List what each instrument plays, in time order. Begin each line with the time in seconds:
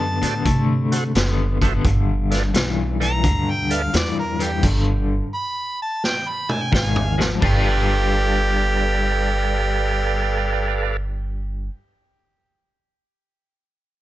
Already playing: upright bass F#2, clean electric guitar D3 B3, harmonica A5
0.22 upright bass A2, clean electric guitar D3 B3, tonewheel organ F#4 A4 C5 D5, closed hi-hat
0.45 upright bass C3, clean electric guitar D3 A3, kick, closed hi-hat
0.92 tonewheel organ F#4 A4 C5 F#5, closed hi-hat
1.15 upright bass F#1, clean electric guitar D3 B3, snare, closed hi-hat
1.61 clean electric guitar D3 B3, tonewheel organ F#4 A4 C5 E5, kick, closed hi-hat
1.85 upright bass G1, clean electric guitar G2 D3, kick, closed hi-hat
2.31 tonewheel organ A4 B4 D5 F5, snare, closed hi-hat
2.54 upright bass B1, clean electric guitar G2 E3, snare, closed hi-hat
3.00 clean electric guitar G2 E3, tonewheel organ A4 B4 D5 G5, harmonica A#5, closed hi-hat
3.23 upright bass D2, clean electric guitar G2 D3, kick, closed hi-hat
3.50 harmonica G5
3.70 tonewheel organ A4 B4 D5 E5, harmonica F5, closed hi-hat
3.93 upright bass E2, clean electric guitar G2 E3, harmonica D5, snare, closed hi-hat
4.19 harmonica A#4
4.39 clean electric guitar G2 E3, harmonica G4, tonewheel organ A4 B4 D5 F5, closed hi-hat
4.63 upright bass G1, clean electric guitar G2 D3, kick, closed hi-hat, crash
5.34 harmonica B5
5.82 harmonica A5
6.04 harmonica G5, snare
6.28 harmonica B5
6.49 harmonica G#5, tonewheel organ A5, mid tom
6.61 tonewheel organ G5
6.72 upright bass G#1, clean electric guitar G#2 D#3, tonewheel organ F5, harmonica G#5, kick, snare
6.96 floor tom
7.18 clean electric guitar G#2 F3, tonewheel organ A#4 C5 D#5 F#5, snare
7.41 upright bass G1, clean electric guitar G3 D4 F4 B4, tonewheel organ A4 B4 D5 F5, kick, crash
7.46 harmonica G4